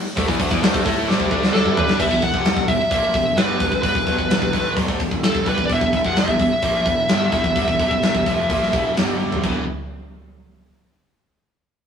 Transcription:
0.16 picked electric bass D2, distorted electric guitar D3 A3, kick, open hi-hat
0.28 picked electric bass E2, distorted electric guitar E3 B3, kick
0.39 picked electric bass D2, distorted electric guitar D3 A3, kick, open hi-hat
0.51 picked electric bass E2, distorted electric guitar E3 B3, kick
0.62 picked electric bass D2, distorted electric guitar D3 A3, snare, open hi-hat
0.74 picked electric bass D2, distorted electric guitar D3 A3, kick
0.84 picked electric bass A2, distorted electric guitar A3 E4 A4, kick, open hi-hat
1.07 picked electric bass D2, distorted electric guitar D3 A3 D4, snare
1.20 kick
1.30 picked electric bass D2, distorted electric guitar D3 A3 D4, kick
1.43 snare
1.52 picked electric bass D2, distorted electric guitar D3 A3 D4, lead electric guitar A4, snare
1.66 mid tom
1.77 lead electric guitar B4, floor tom
1.87 picked electric bass G2, distorted electric guitar G3 D4, snare
1.99 picked electric bass E1, distorted electric guitar E2 B2, lead electric guitar E5, kick, crash
2.10 picked electric bass E1, distorted electric guitar E2 B2, kick, snare
2.22 picked electric bass E1, distorted electric guitar E2 B2, lead electric guitar F#5, kick, open hi-hat
2.33 picked electric bass F1, distorted electric guitar F2 C3 F3, kick
2.45 snare, open hi-hat
2.56 picked electric bass E1, distorted electric guitar E2 B2, kick
2.68 picked electric bass E1, distorted electric guitar E2 B2, lead electric guitar E5, kick, open hi-hat
2.80 muted distorted electric guitar stroke
2.90 picked electric bass A#1, distorted electric guitar A#2 F3 A#3, lead electric guitar E5, kick, open hi-hat
3.14 picked electric bass E1, distorted electric guitar E2 B2, kick, open hi-hat
3.35 picked electric bass G1, distorted electric guitar G2 D3 G3, lead electric guitar B4, snare, open hi-hat
3.60 picked electric bass E1, distorted electric guitar E2 B2, kick, open hi-hat
3.71 picked electric bass E1, distorted electric guitar E2 B2, kick
3.83 picked electric bass G1, distorted electric guitar G2 D3, lead electric guitar B4, kick, open hi-hat
3.95 picked electric bass E1, distorted electric guitar E2 B2, kick
4.07 picked electric bass B1, distorted electric guitar B2 F#3, kick, open hi-hat
4.18 picked electric bass E1, distorted electric guitar E2 B2, kick
4.28 picked electric bass E1, distorted electric guitar E2 B2, snare, open hi-hat
4.42 picked electric bass E1, distorted electric guitar E2 B2, kick
4.53 picked electric bass A1, distorted electric guitar A2 E3 A3, kick, open hi-hat
4.76 picked electric bass B1, distorted electric guitar B2 F#3, kick, open hi-hat
4.88 picked electric bass D2, distorted electric guitar D3 A3, kick
5.00 picked electric bass E1, distorted electric guitar E2 B2, kick, open hi-hat
5.11 picked electric bass E1, distorted electric guitar E2 B2, kick
5.23 lead electric guitar A4, snare, open hi-hat
5.35 picked electric bass E1, distorted electric guitar E2 B2, kick
5.46 picked electric bass C2, distorted electric guitar C3 G3, lead electric guitar B4, kick, open hi-hat
5.58 picked electric bass E1, distorted electric guitar E2 B2, kick
5.65 picked electric bass E1, lead electric guitar D5, open hi-hat
5.70 distorted electric guitar E2 B2, lead electric guitar E5, kick
5.81 picked electric bass E1, distorted electric guitar E2 B2, kick
5.93 picked electric bass E1, distorted electric guitar E2 B2, kick, open hi-hat
6.05 picked electric bass F1, distorted electric guitar F2 C3 F3, lead electric guitar F#5, kick
6.16 lead electric guitar E5, snare, open hi-hat
6.28 picked electric bass E1, distorted electric guitar E2 B2, kick
6.39 picked electric bass E1, distorted electric guitar E2 B2, kick, open hi-hat
6.50 muted picked electric bass stroke, muted distorted electric guitar stroke
6.62 picked electric bass A#1, distorted electric guitar A#2 F3 A#3, kick, open hi-hat
6.86 picked electric bass E1, distorted electric guitar E2 B2, kick, open hi-hat
7.09 picked electric bass G1, distorted electric guitar G2 D3 G3, snare, open hi-hat
7.32 picked electric bass E1, distorted electric guitar E2 B2, kick, open hi-hat
7.44 picked electric bass E1, distorted electric guitar E2 B2, kick
7.56 picked electric bass G1, distorted electric guitar G2 D3, kick, open hi-hat
7.67 picked electric bass E1, distorted electric guitar E2 B2, kick
7.80 picked electric bass B1, distorted electric guitar B2 F#3, kick, open hi-hat
7.91 picked electric bass E1, distorted electric guitar E2 B2, kick
8.03 picked electric bass E1, distorted electric guitar E2 B2, snare, open hi-hat
8.15 picked electric bass E1, distorted electric guitar E2 B2, kick
8.26 picked electric bass F1, distorted electric guitar F2 C3 F3, kick, open hi-hat
8.50 picked electric bass A#1, distorted electric guitar A#2 F3 A#3, kick, open hi-hat
8.63 snare
8.73 picked electric bass E1, distorted electric guitar E2 B2 E3, kick, open hi-hat
8.97 picked electric bass G1, distorted electric guitar G2 D3 G3, snare, open hi-hat
9.20 high tom
9.32 floor tom
9.43 picked electric bass E1, distorted electric guitar E2 B2 E3, kick, crash

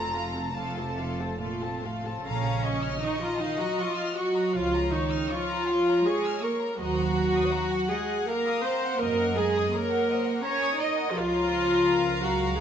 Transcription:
Already playing: double bass section F1, cello section F2, viola section C4 A4, violin section F4 A5 A#5
0.14 viola section A3 F4, violin section A4 F5
0.34 viola section C4 A4, violin section F4 A5
0.55 cello section C3, viola section A3 F4, violin section A4 F5 A5
0.78 viola section C4 A4, violin section F4 A5
0.99 viola section A3 F4, violin section A4 F5
1.20 viola section C4 A4, violin section F4 A5
1.40 cello section A#2, viola section A3 F4, violin section A4 F5
1.62 viola section C4 A4, violin section F4 A5
1.84 cello section A2, viola section A3 F4, violin section A4 F5
2.04 viola section C4 A4, violin section F4 A5
2.24 double bass section A#1, cello section C#3, viola section C#4, violin section F5 A#5
2.46 violin section A#5
2.65 violin section D#5 C#6
2.83 violin section F6
3.03 cello section D#3, viola section D#4, violin section C#6
3.22 cello section F3, viola section F4, violin section A#5
3.40 cello section D#3, viola section D#4, violin section F5
3.59 cello section F#3, viola section F#4, violin section A#5
3.78 cello section F3, viola section F4, violin section C#6
3.98 violin section F6
4.17 cello section F#3, viola section F#4, violin section C#6
4.36 violin section A#5
4.55 double bass section C#2, cello section F3, viola section F4, violin section C#5 F5
4.74 violin section A#5
4.92 cello section D#3, viola section D#4, violin section C#6
5.12 violin section F6
5.30 cello section F3, viola section F4, violin section C#6
5.50 violin section A#5
5.69 violin section F5
5.88 violin section A#5
6.06 cello section G#3, viola section G#4, violin section C#6
6.26 violin section F6
6.43 cello section A#3, viola section A#4, violin section C#6
6.61 violin section A#5
6.79 double bass section D#2, cello section F#3, viola section F#4, violin section C5 D#5 A#5
6.99 violin section F#5
7.18 violin section A#4 A#5
7.37 violin section D#6
7.53 violin section F#5 A#5
7.72 violin section F#5
7.90 cello section G#3, viola section G#4, violin section D#5
8.10 violin section F#5
8.27 cello section A#3, viola section A#4, violin section F5 A#5
8.47 violin section D#6
8.64 cello section C4, viola section C5, violin section A#5
8.83 violin section F#5
8.99 double bass section F#2, cello section A#3, viola section A#4, violin section D#5
9.19 violin section F#5
9.36 cello section G#3, viola section G#4, violin section A#5
9.56 violin section D#6
9.73 cello section A#3, viola section A#4, violin section C#5 A#5
9.92 violin section F#5
10.08 violin section C5 D#5
10.26 violin section F#5
10.43 cello section C#4, viola section C#5, violin section A#5
10.47 violin section A#4
10.61 violin section D#6
10.79 cello section D#4, viola section D#5, violin section A#5
10.97 violin section F#5
11.14 double bass section C#2, cello section F3, viola section F4, violin section C#5 F5 A#5
11.87 violin section A#4
12.22 cello section F#3, viola section F#4

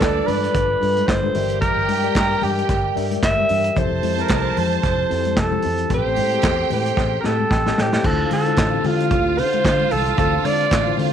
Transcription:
Already playing: tine electric piano G3 D4 F4 A4 B4, string section D4 D5, alto saxophone A4
0.00 fingered electric bass D2, kick, snare, clap, closed hi-hat
0.27 fingered electric bass G2, alto saxophone B4, open hi-hat, muted conga, high conga, low conga
0.44 closed hi-hat
0.54 fingered electric bass G1, kick, closed hi-hat, muted conga
0.81 fingered electric bass G2, tine electric piano G3 D4 F4 A4 B4, open hi-hat, muted conga
0.97 closed hi-hat, high conga
1.07 fingered electric bass G1, alto saxophone C5, kick, snare, clap, closed hi-hat, muted conga
1.23 tine electric piano G3 D4 F4 A4 B4, high conga
1.34 fingered electric bass G1, tine electric piano G3 G4 A#4 D5 E5, string section G4 G5, open hi-hat, muted conga, low conga
1.50 closed hi-hat
1.61 alto saxophone A#4, kick, closed hi-hat, low conga
1.77 fingered electric bass G1
1.88 fingered electric bass G2, open hi-hat, muted conga, high conga
2.03 tine electric piano G3 G4 A#4 D5 G5, closed hi-hat
2.15 fingered electric bass G2, alto saxophone A#4, kick, snare, clap, closed hi-hat
2.42 fingered electric bass G2, alto saxophone G4, open hi-hat, high conga, low conga
2.58 closed hi-hat
2.69 fingered electric bass G1, kick, snare, closed hi-hat
2.95 fingered electric bass G2, tine electric piano G3 G4 A#4 D5 E5, open hi-hat
3.11 closed hi-hat, high conga
3.23 fingered electric bass G1, alto saxophone E5, kick, snare, clap, closed hi-hat
3.38 tine electric piano G3 G4 A#4 D5 E5, high conga
3.49 fingered electric bass G2, open hi-hat, muted conga, low conga
3.64 closed hi-hat
3.76 fingered electric bass F1, tine electric piano F3 C4 E4 G4 A4, string section C5 A5, alto saxophone C5, kick, closed hi-hat, low conga
3.91 fingered electric bass F1
4.03 fingered electric bass F2, open hi-hat, high conga
4.17 tine electric piano F3 C4 E4 G4 C5, closed hi-hat
4.21 alto saxophone A#4
4.28 fingered electric bass C2, kick, snare, clap, closed hi-hat, muted conga
4.57 fingered electric bass F2, alto saxophone C5, open hi-hat, muted conga, high conga, low conga
4.72 closed hi-hat
4.83 fingered electric bass F1, kick, snare, closed hi-hat
5.09 fingered electric bass F2, tine electric piano F3 C4 E4 G4 A4, open hi-hat, muted conga
5.25 closed hi-hat, high conga
5.37 fingered electric bass F1, kick, snare, clap, closed hi-hat
5.41 alto saxophone A4
5.51 tine electric piano F3 C4 E4 G4 C5, high conga
5.62 fingered electric bass F2, open hi-hat, muted conga, low conga
5.78 closed hi-hat
5.89 fingered electric bass A1, tine electric piano C4 G4 A4, string section G4 G5, kick, closed hi-hat, muted conga, low conga
5.94 alto saxophone C5
6.06 fingered electric bass A1
6.16 fingered electric bass A2, open hi-hat, high conga
6.31 tine electric piano C4 G4 G#4, closed hi-hat
6.39 tine electric piano A4, closed hi-hat
6.43 fingered electric bass E2, kick, snare, clap
6.70 fingered electric bass A2, alto saxophone C5, open hi-hat, high conga, low conga
6.86 closed hi-hat
6.97 fingered electric bass A1, kick, snare, muted conga
7.21 tine electric piano C4 G4, alto saxophone A#4, snare, muted conga
7.25 fingered electric bass A2, tine electric piano A4, alto saxophone A4
7.40 high conga
7.51 fingered electric bass A1, tine electric piano G5, kick, snare, muted conga
7.66 tine electric piano C4 G4 A4, snare, high conga
7.78 fingered electric bass A2, alto saxophone G4, tine electric piano C5, snare, low conga
7.93 snare
8.03 fingered electric bass D2, tine electric piano D3 D4 E4 F4 C5, string section F4 F5, alto saxophone A4, kick, crash, low conga
8.30 fingered electric bass D3, alto saxophone A4, open hi-hat, high conga
8.46 tine electric piano D3 D4 E4 F4 C5, closed hi-hat
8.56 fingered electric bass A1, kick, snare, clap, closed hi-hat, muted conga
8.72 tine electric piano D3 C4 D4 F4 G4
8.80 tine electric piano A4
8.84 fingered electric bass D3, alto saxophone F4, open hi-hat, muted conga, high conga, low conga
9.00 closed hi-hat
9.11 fingered electric bass D2, kick, closed hi-hat
9.38 fingered electric bass D3, alto saxophone C5, open hi-hat
9.53 closed hi-hat, high conga
9.64 fingered electric bass D3, kick, snare, clap, closed hi-hat, muted conga
9.80 high conga
9.91 fingered electric bass C2, alto saxophone A4, open hi-hat, low conga
10.06 closed hi-hat
10.17 fingered electric bass D2, tine electric piano D3 C4 D4 F4 C5, alto saxophone A4, kick, closed hi-hat, muted conga, low conga
10.45 fingered electric bass D3, alto saxophone D5, open hi-hat, high conga
10.61 closed hi-hat
10.71 fingered electric bass A1, kick, snare, clap, closed hi-hat
10.86 tine electric piano D3 D4 E4 F4 C5
10.97 tine electric piano D3 C4 D4 F4 C5, fingered electric bass D3, open hi-hat, muted conga, high conga, low conga

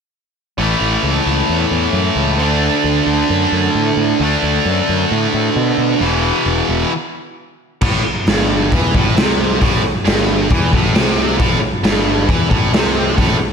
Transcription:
0.58 picked electric bass A1, distorted electric guitar A2 E3
0.62 distorted electric guitar A3
0.81 picked electric bass A1
1.03 picked electric bass C#2
1.26 picked electric bass C#2
1.49 picked electric bass E2
1.71 picked electric bass E2
1.93 picked electric bass F#2
2.16 picked electric bass C#2
2.38 picked electric bass D2, distorted electric guitar D3 A3
2.44 distorted electric guitar D4
2.84 picked electric bass D2
3.07 picked electric bass D2
3.30 picked electric bass F#2
3.52 picked electric bass F#2
3.75 picked electric bass A2
3.97 picked electric bass A2
4.20 picked electric bass D2, distorted electric guitar D3 A3
4.24 distorted electric guitar D4
4.43 picked electric bass D2
4.65 picked electric bass F#2
4.89 picked electric bass F#2
5.11 picked electric bass A2
5.34 picked electric bass A2
5.56 picked electric bass B2
5.78 picked electric bass B2
6.00 picked electric bass E1, distorted electric guitar E2 B2 E3
6.46 picked electric bass E1
6.69 picked electric bass E1
7.81 picked electric bass A1, distorted electric guitar A2, kick, crash
8.04 muted distorted electric guitar stroke
8.27 picked electric bass G1, distorted electric guitar G2, snare, open hi-hat
8.72 picked electric bass E2, distorted electric guitar E3, kick, open hi-hat
8.95 picked electric bass A1, distorted electric guitar A2, kick
9.17 picked electric bass C2, distorted electric guitar C3, snare, open hi-hat
9.60 picked electric bass A1, distorted electric guitar A2, kick, open hi-hat
9.84 muted distorted electric guitar stroke, muted picked electric bass stroke
10.05 picked electric bass G1, distorted electric guitar G2, snare, open hi-hat
10.50 picked electric bass E2, distorted electric guitar E3, kick, open hi-hat
10.73 picked electric bass A1, distorted electric guitar A2, kick
10.94 picked electric bass C2, distorted electric guitar C3, snare, open hi-hat
11.39 picked electric bass A1, distorted electric guitar A2, kick, open hi-hat
11.61 muted distorted electric guitar stroke, muted picked electric bass stroke
11.83 picked electric bass G1, distorted electric guitar G2, snare, open hi-hat
12.29 picked electric bass E2, distorted electric guitar E3, kick, open hi-hat
12.50 picked electric bass A1, distorted electric guitar A2, kick
12.73 picked electric bass C2, distorted electric guitar C3, snare, open hi-hat
13.17 picked electric bass A1, distorted electric guitar A2, kick, open hi-hat
13.39 muted distorted electric guitar stroke, muted picked electric bass stroke

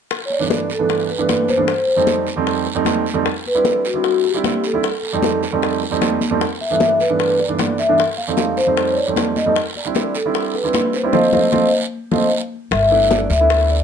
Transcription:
0.11 high bongo, high conga, long guiro
0.26 vibraphone C#5
0.30 vibraphone D5, high conga
0.39 grand piano G2 E3 A3 B3 D4
0.50 high bongo, high conga, short guiro
0.70 vibraphone A4, high bongo, high conga, short guiro
0.79 grand piano G2 E3 A3 B3 D4
0.89 high bongo, high conga, long guiro
1.10 vibraphone B4, high bongo, high conga
1.18 grand piano G2 E3 A3 B3 D4
1.29 high bongo, low bongo, high conga, short guiro
1.48 vibraphone C5, high bongo, high conga, short guiro
1.57 grand piano G2 E3 A3 B3 D4
1.68 high bongo, high conga, long guiro
1.88 high conga
1.96 grand piano F2 G3 A3 C4 D#4
2.07 high bongo, high conga, short guiro
2.26 high bongo, high conga, short guiro
2.36 grand piano F2 G3 A3 C4 D#4
2.47 high bongo, high conga, long guiro
2.66 high bongo, high conga
2.75 grand piano F2 G3 A3 C4 D#4
2.85 high bongo, low bongo, high conga, short guiro
3.06 short guiro
3.14 grand piano F2 G3 A3 C4 D#4
3.25 high bongo, high conga, long guiro
3.46 vibraphone B4, high conga
3.55 grand piano G3 C4 D4 E4
3.65 high bongo, high conga, short guiro
3.85 vibraphone F#4, high bongo, high conga, short guiro
3.94 grand piano G3 C4 D4 E4
4.04 high bongo, high conga, long guiro
4.24 vibraphone G4, high bongo, high conga
4.34 grand piano G3 C4 D4 E4
4.44 high bongo, low bongo, high conga, short guiro
4.64 vibraphone A4, high bongo, short guiro
4.74 grand piano G3 C4 D4 E4
4.83 high bongo, high conga, long guiro
5.03 high conga
5.13 grand piano F2 G3 A3 C4 D#4
5.22 high bongo, high conga, short guiro
5.43 high bongo, high conga, short guiro
5.53 grand piano F2 G3 A3 C4 D#4
5.62 high bongo, high conga, long guiro
5.81 high bongo, high conga
5.91 grand piano F2 G3 A3 C4 D#4
6.01 high bongo, low bongo, high conga, short guiro
6.21 high conga, short guiro
6.31 grand piano F2 G3 A3 C4 D#4
6.41 high bongo, high conga, long guiro
6.61 vibraphone E5, high conga
6.70 grand piano G2 E3 A3 B3 D4
6.80 high bongo, high conga, short guiro
7.00 vibraphone B4, high bongo, high conga, short guiro
7.09 grand piano G2 E3 A3 B3 D4
7.19 high bongo, high conga, long guiro
7.39 vibraphone D5, high bongo, high conga
7.48 grand piano G2 E3 A3 B3 D4
7.59 high bongo, low bongo, high conga, short guiro
7.78 vibraphone E5, high bongo, short guiro
7.89 grand piano G2 E3 A3 B3 D4
7.98 high bongo, high conga, long guiro
8.17 vibraphone F5, high conga
8.28 grand piano F2 G3 A3 C4 D#4
8.37 high bongo, high conga, short guiro
8.57 vibraphone C5, high bongo, high conga, short guiro
8.67 grand piano F2 G3 A3 C4 D#4
8.76 high bongo, high conga, long guiro
8.91 vibraphone C#5
8.97 vibraphone D5, high bongo, high conga
9.07 grand piano F2 G3 A3 C4 D#4
9.16 high bongo, low bongo, high conga, short guiro
9.36 vibraphone D#5, high conga, short guiro
9.46 grand piano F2 G3 A3 C4 D#4
9.56 high bongo, high conga, long guiro
9.76 vibraphone D5, high conga
9.85 grand piano G3 C4 D4 E4
9.95 high bongo, high conga, short guiro
10.15 vibraphone A4, high bongo, high conga, short guiro
10.26 grand piano G3 C4 D4 E4
10.34 high bongo, high conga, long guiro
10.54 vibraphone B4, high bongo, high conga
10.64 grand piano G3 C4 D4 E4
10.73 high bongo, low bongo, high conga, short guiro
10.88 vibraphone B4
10.93 vibraphone C5, high bongo, short guiro
11.03 grand piano G3 C4 D4 E4
11.13 grand piano F3 A3 C4, vibraphone C5 D#5 F5, low bongo, high conga, long guiro
11.33 grand piano F3 A3 C4, vibraphone C5 D#5 F5, low bongo, high conga, long guiro
11.52 grand piano F3 A3 C4, vibraphone C5 D#5 F5, low bongo, high conga, long guiro
12.11 grand piano F3 A3 C4, vibraphone C5 D#5 F5, low bongo, high conga, long guiro
12.71 upright bass G1, vibraphone E5, high bongo, high conga, long guiro
12.90 grand piano A3 B3 D4 E4, high conga
13.11 vibraphone D5, high bongo, high conga, short guiro
13.30 upright bass D2, vibraphone E5, high bongo, high conga, short guiro
13.40 grand piano A3 B3 D4 E4
13.50 high bongo, high conga, long guiro
13.70 vibraphone D5, high bongo, high conga

